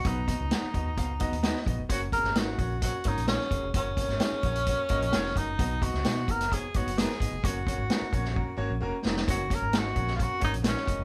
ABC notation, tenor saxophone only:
X:1
M:4/4
L:1/16
Q:1/4=130
K:F#
V:1 name="Tenor saxophone"
D12- D2 z2 | F2 A2 F4 F2 D2 C4 | C12- C2 D2- | D2 F4 A2 G2 F2 G4 |
F12 z4 | F2 A2 F3- F/2 E/2 F2 D2 C3- C/2 z/2 |]